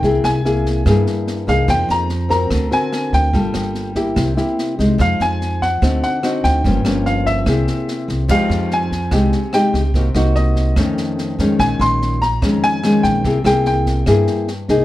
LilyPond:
<<
  \new Staff \with { instrumentName = "Grand piano" } { \time 4/4 \key f \minor \tempo 4 = 145 g''8 aes''2 r4 f''8 | g''8 bes''4 bes''4 aes''4 g''8~ | g''2.~ g''8 r8 | f''8 aes''4 ges''4 fis''4 g''8~ |
g''4 f''8 e''2 r8 | f''4 aes''2 g''4 | r4 ees''2~ ees''8 r8 | aes''8 c'''4 bes''4 aes''4 g''8~ |
g''8 g''8 g''2~ g''8 r8 | }
  \new Staff \with { instrumentName = "Nylon-string guitar" } { \time 4/4 \key f \minor << { <bes e' aes'>4 <bes e' aes'>4 <bes e' aes'>4. <bes ees' aes'>8~ | <bes ees' aes'>4 r8 <c' ges' bes'>4 <c' fis' ais'>4. | <bes f' a'>4. <bes e' g'>4 <bes e' g'>4 <aes ees'>8~ | <aes ees'>4. r8 <c' ees' fis'>4 <c' ees' fis'>4 |
<f bes des'>8 <f bes des'>4. <bes e' aes'>2 | <aes ees' g'>4. r8 <aes ees' g'>8 r8 <aes ees' g'>8 r8 | <bes ees' ges'>8 <bes ees' ges'>4. <ees a des'>4. <ees aes des'>8~ | <ees aes des'>4. r8 <ees aes des'>4 <ees aes des'>4 |
<bes e' aes'>8 <bes e' aes'>4. <bes e' aes'>4 r8 <bes ees' aes'>8 | } \\ { c2 g,2 | f2 d2 | g2 c2 | f2 d2 |
g,2 c2 | f2 c2 | c2 f,2 | bes,2 f,2 |
c2 g,2 | } >> }
  \new Staff \with { instrumentName = "Upright bass" } { \clef bass \time 4/4 \key f \minor c,8 c,4. g,8 r4 c,8 | f,8 f,4. d,8 r4 d,8 | g,,8 g,,4. c,8 r4 c,8 | f,8 f,4. d,8 r4 d,8 |
g,,8 g,,4. c,8 r4 c,8 | f,8 f,4. c,8 r4 des,8 | c,8 c,4. f,8 r4 f,8 | bes,,8 bes,,4. f,8 r4 bes,,8 |
c,8 c,4. g,8 r4 c,8 | }
  \new DrumStaff \with { instrumentName = "Drums" } \drummode { \time 4/4 <bd sn>8 <ss sn>8 sn8 <bd sn>8 <bd ss sn>8 sn8 sn8 <bd sn>8 | <bd ss sn>8 sn8 sn8 <bd sn>8 <bd ss sn>8 sn8 <ss sn>8 <bd sn>8 | <bd sn>8 <ss sn>8 sn8 <bd sn>8 <bd ss sn>8 sn8 sn8 <bd sn>8 | <bd ss sn>8 sn8 sn8 <bd sn>8 <bd ss sn>8 sn8 <ss sn>8 <bd sn>8 |
<bd sn>8 <ss sn>8 sn8 <bd sn>8 <bd ss sn>8 sn8 sn8 <bd sn>8 | <cymc bd ss sn>8 sn8 sn8 <bd sn>8 <bd ss sn>8 sn8 <ss sn>8 <bd sn>8 | <bd sn>8 <ss sn>8 sn8 <bd sn>8 <bd ss sn>8 sn8 sn8 <bd sn>8 | <bd ss sn>8 sn8 sn8 <bd sn>8 <bd ss sn>8 sn8 <ss sn>8 <bd sn>8 |
<bd sn>8 <ss sn>8 sn8 <bd sn>8 <bd ss sn>8 sn8 sn8 <bd sn>8 | }
>>